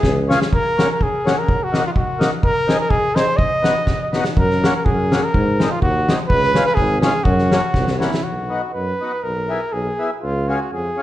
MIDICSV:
0, 0, Header, 1, 5, 480
1, 0, Start_track
1, 0, Key_signature, 6, "major"
1, 0, Tempo, 481928
1, 511, Time_signature, 2, 2, 24, 8
1, 7225, Tempo, 496689
1, 10869, End_track
2, 0, Start_track
2, 0, Title_t, "Trumpet"
2, 0, Program_c, 0, 56
2, 0, Note_on_c, 0, 68, 78
2, 258, Note_off_c, 0, 68, 0
2, 536, Note_on_c, 0, 70, 94
2, 868, Note_off_c, 0, 70, 0
2, 914, Note_on_c, 0, 70, 75
2, 1022, Note_on_c, 0, 68, 72
2, 1037, Note_off_c, 0, 70, 0
2, 1379, Note_on_c, 0, 70, 78
2, 1394, Note_off_c, 0, 68, 0
2, 1629, Note_on_c, 0, 66, 80
2, 1644, Note_off_c, 0, 70, 0
2, 1850, Note_off_c, 0, 66, 0
2, 1858, Note_on_c, 0, 65, 83
2, 1903, Note_off_c, 0, 65, 0
2, 1959, Note_on_c, 0, 66, 72
2, 2289, Note_off_c, 0, 66, 0
2, 2434, Note_on_c, 0, 70, 100
2, 2763, Note_off_c, 0, 70, 0
2, 2786, Note_on_c, 0, 70, 88
2, 2892, Note_on_c, 0, 68, 90
2, 2907, Note_off_c, 0, 70, 0
2, 3143, Note_on_c, 0, 72, 90
2, 3158, Note_off_c, 0, 68, 0
2, 3356, Note_on_c, 0, 75, 93
2, 3371, Note_off_c, 0, 72, 0
2, 4112, Note_off_c, 0, 75, 0
2, 4356, Note_on_c, 0, 70, 86
2, 4701, Note_off_c, 0, 70, 0
2, 4743, Note_on_c, 0, 70, 75
2, 4829, Note_on_c, 0, 68, 85
2, 4844, Note_off_c, 0, 70, 0
2, 5219, Note_on_c, 0, 70, 86
2, 5234, Note_off_c, 0, 68, 0
2, 5679, Note_on_c, 0, 65, 81
2, 5694, Note_off_c, 0, 70, 0
2, 5787, Note_off_c, 0, 65, 0
2, 5793, Note_on_c, 0, 66, 90
2, 6133, Note_off_c, 0, 66, 0
2, 6250, Note_on_c, 0, 71, 97
2, 6597, Note_off_c, 0, 71, 0
2, 6627, Note_on_c, 0, 71, 95
2, 6722, Note_on_c, 0, 68, 88
2, 6737, Note_off_c, 0, 71, 0
2, 6981, Note_off_c, 0, 68, 0
2, 6987, Note_on_c, 0, 68, 81
2, 7209, Note_on_c, 0, 66, 80
2, 7224, Note_off_c, 0, 68, 0
2, 7931, Note_off_c, 0, 66, 0
2, 7937, Note_on_c, 0, 64, 68
2, 8173, Note_on_c, 0, 66, 66
2, 8187, Note_off_c, 0, 64, 0
2, 8651, Note_off_c, 0, 66, 0
2, 8657, Note_on_c, 0, 71, 67
2, 9140, Note_on_c, 0, 70, 76
2, 9154, Note_off_c, 0, 71, 0
2, 9616, Note_on_c, 0, 68, 68
2, 9630, Note_off_c, 0, 70, 0
2, 9989, Note_off_c, 0, 68, 0
2, 10085, Note_on_c, 0, 65, 73
2, 10345, Note_on_c, 0, 66, 68
2, 10359, Note_off_c, 0, 65, 0
2, 10575, Note_off_c, 0, 66, 0
2, 10584, Note_on_c, 0, 68, 69
2, 10869, Note_off_c, 0, 68, 0
2, 10869, End_track
3, 0, Start_track
3, 0, Title_t, "Accordion"
3, 0, Program_c, 1, 21
3, 284, Note_on_c, 1, 61, 66
3, 295, Note_on_c, 1, 65, 64
3, 311, Note_on_c, 1, 68, 76
3, 386, Note_off_c, 1, 61, 0
3, 392, Note_off_c, 1, 65, 0
3, 400, Note_off_c, 1, 68, 0
3, 764, Note_on_c, 1, 58, 58
3, 775, Note_on_c, 1, 61, 51
3, 788, Note_on_c, 1, 66, 65
3, 867, Note_off_c, 1, 58, 0
3, 873, Note_off_c, 1, 61, 0
3, 879, Note_off_c, 1, 66, 0
3, 1242, Note_on_c, 1, 58, 58
3, 1253, Note_on_c, 1, 61, 52
3, 1265, Note_on_c, 1, 66, 66
3, 1346, Note_off_c, 1, 58, 0
3, 1351, Note_off_c, 1, 61, 0
3, 1357, Note_off_c, 1, 66, 0
3, 1710, Note_on_c, 1, 58, 66
3, 1718, Note_on_c, 1, 63, 57
3, 1731, Note_on_c, 1, 66, 67
3, 1817, Note_off_c, 1, 58, 0
3, 1821, Note_off_c, 1, 63, 0
3, 1827, Note_off_c, 1, 66, 0
3, 2176, Note_on_c, 1, 58, 61
3, 2190, Note_on_c, 1, 63, 55
3, 2198, Note_on_c, 1, 66, 65
3, 2285, Note_off_c, 1, 58, 0
3, 2292, Note_off_c, 1, 63, 0
3, 2297, Note_off_c, 1, 66, 0
3, 2657, Note_on_c, 1, 60, 55
3, 2666, Note_on_c, 1, 63, 59
3, 2678, Note_on_c, 1, 68, 71
3, 2762, Note_off_c, 1, 60, 0
3, 2767, Note_off_c, 1, 63, 0
3, 2773, Note_off_c, 1, 68, 0
3, 3131, Note_on_c, 1, 60, 56
3, 3141, Note_on_c, 1, 63, 49
3, 3150, Note_on_c, 1, 68, 57
3, 3239, Note_off_c, 1, 60, 0
3, 3244, Note_off_c, 1, 63, 0
3, 3249, Note_off_c, 1, 68, 0
3, 3604, Note_on_c, 1, 59, 58
3, 3611, Note_on_c, 1, 63, 59
3, 3625, Note_on_c, 1, 66, 63
3, 3719, Note_off_c, 1, 59, 0
3, 3723, Note_off_c, 1, 63, 0
3, 3729, Note_off_c, 1, 66, 0
3, 4106, Note_on_c, 1, 59, 66
3, 4122, Note_on_c, 1, 63, 61
3, 4133, Note_on_c, 1, 66, 79
3, 4215, Note_off_c, 1, 59, 0
3, 4223, Note_off_c, 1, 63, 0
3, 4228, Note_off_c, 1, 66, 0
3, 4606, Note_on_c, 1, 58, 59
3, 4621, Note_on_c, 1, 61, 54
3, 4631, Note_on_c, 1, 66, 68
3, 4710, Note_off_c, 1, 58, 0
3, 4717, Note_off_c, 1, 61, 0
3, 4722, Note_off_c, 1, 66, 0
3, 5087, Note_on_c, 1, 58, 48
3, 5096, Note_on_c, 1, 61, 58
3, 5103, Note_on_c, 1, 66, 61
3, 5190, Note_off_c, 1, 58, 0
3, 5195, Note_off_c, 1, 61, 0
3, 5198, Note_off_c, 1, 66, 0
3, 5572, Note_on_c, 1, 56, 60
3, 5585, Note_on_c, 1, 60, 58
3, 5596, Note_on_c, 1, 63, 66
3, 5671, Note_off_c, 1, 56, 0
3, 5678, Note_off_c, 1, 60, 0
3, 5683, Note_off_c, 1, 63, 0
3, 6059, Note_on_c, 1, 56, 58
3, 6068, Note_on_c, 1, 60, 53
3, 6083, Note_on_c, 1, 63, 69
3, 6153, Note_off_c, 1, 56, 0
3, 6158, Note_off_c, 1, 60, 0
3, 6165, Note_off_c, 1, 63, 0
3, 6518, Note_on_c, 1, 56, 69
3, 6529, Note_on_c, 1, 61, 67
3, 6538, Note_on_c, 1, 65, 71
3, 6619, Note_off_c, 1, 56, 0
3, 6625, Note_off_c, 1, 61, 0
3, 6629, Note_off_c, 1, 65, 0
3, 6991, Note_on_c, 1, 56, 59
3, 7000, Note_on_c, 1, 61, 59
3, 7009, Note_on_c, 1, 65, 69
3, 7096, Note_off_c, 1, 56, 0
3, 7100, Note_off_c, 1, 61, 0
3, 7105, Note_off_c, 1, 65, 0
3, 7470, Note_on_c, 1, 58, 58
3, 7480, Note_on_c, 1, 61, 53
3, 7487, Note_on_c, 1, 66, 66
3, 7572, Note_off_c, 1, 58, 0
3, 7578, Note_off_c, 1, 61, 0
3, 7581, Note_off_c, 1, 66, 0
3, 7939, Note_on_c, 1, 58, 59
3, 7944, Note_on_c, 1, 61, 65
3, 7955, Note_on_c, 1, 66, 65
3, 8050, Note_off_c, 1, 58, 0
3, 8052, Note_off_c, 1, 61, 0
3, 8058, Note_off_c, 1, 66, 0
3, 8420, Note_on_c, 1, 59, 46
3, 8431, Note_on_c, 1, 63, 41
3, 8439, Note_on_c, 1, 66, 51
3, 8535, Note_off_c, 1, 59, 0
3, 8541, Note_off_c, 1, 63, 0
3, 8545, Note_off_c, 1, 66, 0
3, 8918, Note_on_c, 1, 59, 45
3, 8925, Note_on_c, 1, 63, 43
3, 8936, Note_on_c, 1, 66, 50
3, 9024, Note_off_c, 1, 59, 0
3, 9028, Note_off_c, 1, 63, 0
3, 9033, Note_off_c, 1, 66, 0
3, 9379, Note_on_c, 1, 59, 50
3, 9385, Note_on_c, 1, 64, 44
3, 9398, Note_on_c, 1, 68, 52
3, 9492, Note_off_c, 1, 59, 0
3, 9496, Note_off_c, 1, 64, 0
3, 9502, Note_off_c, 1, 68, 0
3, 9861, Note_on_c, 1, 59, 45
3, 9871, Note_on_c, 1, 64, 44
3, 9883, Note_on_c, 1, 68, 52
3, 9972, Note_off_c, 1, 59, 0
3, 9977, Note_off_c, 1, 64, 0
3, 9983, Note_off_c, 1, 68, 0
3, 10341, Note_on_c, 1, 61, 54
3, 10345, Note_on_c, 1, 65, 46
3, 10357, Note_on_c, 1, 68, 55
3, 10451, Note_off_c, 1, 61, 0
3, 10453, Note_off_c, 1, 65, 0
3, 10459, Note_off_c, 1, 68, 0
3, 10817, Note_on_c, 1, 61, 46
3, 10827, Note_on_c, 1, 65, 38
3, 10837, Note_on_c, 1, 68, 51
3, 10869, Note_off_c, 1, 61, 0
3, 10869, Note_off_c, 1, 65, 0
3, 10869, Note_off_c, 1, 68, 0
3, 10869, End_track
4, 0, Start_track
4, 0, Title_t, "Tuba"
4, 0, Program_c, 2, 58
4, 34, Note_on_c, 2, 37, 89
4, 347, Note_off_c, 2, 37, 0
4, 4351, Note_on_c, 2, 42, 87
4, 4667, Note_off_c, 2, 42, 0
4, 4842, Note_on_c, 2, 42, 80
4, 5152, Note_off_c, 2, 42, 0
4, 5322, Note_on_c, 2, 44, 93
4, 5631, Note_off_c, 2, 44, 0
4, 5802, Note_on_c, 2, 39, 82
4, 6109, Note_off_c, 2, 39, 0
4, 6272, Note_on_c, 2, 37, 87
4, 6579, Note_off_c, 2, 37, 0
4, 6740, Note_on_c, 2, 32, 96
4, 7053, Note_off_c, 2, 32, 0
4, 7226, Note_on_c, 2, 42, 102
4, 7533, Note_off_c, 2, 42, 0
4, 7700, Note_on_c, 2, 36, 86
4, 8015, Note_off_c, 2, 36, 0
4, 8179, Note_on_c, 2, 35, 59
4, 8498, Note_off_c, 2, 35, 0
4, 8670, Note_on_c, 2, 42, 70
4, 8839, Note_off_c, 2, 42, 0
4, 9145, Note_on_c, 2, 35, 72
4, 9456, Note_off_c, 2, 35, 0
4, 9618, Note_on_c, 2, 35, 71
4, 9787, Note_off_c, 2, 35, 0
4, 10101, Note_on_c, 2, 37, 82
4, 10413, Note_off_c, 2, 37, 0
4, 10578, Note_on_c, 2, 41, 69
4, 10746, Note_off_c, 2, 41, 0
4, 10869, End_track
5, 0, Start_track
5, 0, Title_t, "Drums"
5, 32, Note_on_c, 9, 36, 54
5, 35, Note_on_c, 9, 38, 70
5, 132, Note_off_c, 9, 36, 0
5, 135, Note_off_c, 9, 38, 0
5, 306, Note_on_c, 9, 38, 60
5, 306, Note_on_c, 9, 44, 40
5, 406, Note_off_c, 9, 38, 0
5, 406, Note_off_c, 9, 44, 0
5, 414, Note_on_c, 9, 38, 66
5, 514, Note_off_c, 9, 38, 0
5, 524, Note_on_c, 9, 36, 70
5, 623, Note_off_c, 9, 36, 0
5, 786, Note_on_c, 9, 38, 71
5, 885, Note_off_c, 9, 38, 0
5, 1003, Note_on_c, 9, 36, 56
5, 1102, Note_off_c, 9, 36, 0
5, 1265, Note_on_c, 9, 38, 65
5, 1365, Note_off_c, 9, 38, 0
5, 1479, Note_on_c, 9, 36, 71
5, 1578, Note_off_c, 9, 36, 0
5, 1730, Note_on_c, 9, 38, 61
5, 1830, Note_off_c, 9, 38, 0
5, 1949, Note_on_c, 9, 36, 68
5, 2049, Note_off_c, 9, 36, 0
5, 2202, Note_on_c, 9, 38, 72
5, 2302, Note_off_c, 9, 38, 0
5, 2423, Note_on_c, 9, 36, 68
5, 2522, Note_off_c, 9, 36, 0
5, 2679, Note_on_c, 9, 38, 66
5, 2778, Note_off_c, 9, 38, 0
5, 2893, Note_on_c, 9, 36, 62
5, 2993, Note_off_c, 9, 36, 0
5, 3148, Note_on_c, 9, 38, 69
5, 3247, Note_off_c, 9, 38, 0
5, 3372, Note_on_c, 9, 36, 72
5, 3471, Note_off_c, 9, 36, 0
5, 3627, Note_on_c, 9, 38, 67
5, 3727, Note_off_c, 9, 38, 0
5, 3851, Note_on_c, 9, 38, 42
5, 3854, Note_on_c, 9, 36, 55
5, 3950, Note_off_c, 9, 38, 0
5, 3954, Note_off_c, 9, 36, 0
5, 4113, Note_on_c, 9, 38, 51
5, 4213, Note_off_c, 9, 38, 0
5, 4226, Note_on_c, 9, 38, 53
5, 4326, Note_off_c, 9, 38, 0
5, 4350, Note_on_c, 9, 36, 77
5, 4450, Note_off_c, 9, 36, 0
5, 4489, Note_on_c, 9, 38, 23
5, 4588, Note_off_c, 9, 38, 0
5, 4619, Note_on_c, 9, 38, 70
5, 4719, Note_off_c, 9, 38, 0
5, 4839, Note_on_c, 9, 36, 65
5, 4938, Note_off_c, 9, 36, 0
5, 5099, Note_on_c, 9, 38, 73
5, 5199, Note_off_c, 9, 38, 0
5, 5322, Note_on_c, 9, 36, 66
5, 5421, Note_off_c, 9, 36, 0
5, 5577, Note_on_c, 9, 38, 66
5, 5677, Note_off_c, 9, 38, 0
5, 5798, Note_on_c, 9, 36, 56
5, 5898, Note_off_c, 9, 36, 0
5, 6062, Note_on_c, 9, 38, 75
5, 6162, Note_off_c, 9, 38, 0
5, 6274, Note_on_c, 9, 36, 71
5, 6373, Note_off_c, 9, 36, 0
5, 6408, Note_on_c, 9, 38, 25
5, 6508, Note_off_c, 9, 38, 0
5, 6522, Note_on_c, 9, 38, 59
5, 6622, Note_off_c, 9, 38, 0
5, 6743, Note_on_c, 9, 36, 59
5, 6843, Note_off_c, 9, 36, 0
5, 6996, Note_on_c, 9, 38, 75
5, 7096, Note_off_c, 9, 38, 0
5, 7224, Note_on_c, 9, 36, 77
5, 7320, Note_off_c, 9, 36, 0
5, 7351, Note_on_c, 9, 38, 24
5, 7447, Note_off_c, 9, 38, 0
5, 7478, Note_on_c, 9, 38, 63
5, 7575, Note_off_c, 9, 38, 0
5, 7695, Note_on_c, 9, 36, 60
5, 7698, Note_on_c, 9, 38, 40
5, 7791, Note_off_c, 9, 36, 0
5, 7794, Note_off_c, 9, 38, 0
5, 7823, Note_on_c, 9, 38, 42
5, 7920, Note_off_c, 9, 38, 0
5, 7958, Note_on_c, 9, 38, 55
5, 8055, Note_off_c, 9, 38, 0
5, 8079, Note_on_c, 9, 38, 63
5, 8176, Note_off_c, 9, 38, 0
5, 10869, End_track
0, 0, End_of_file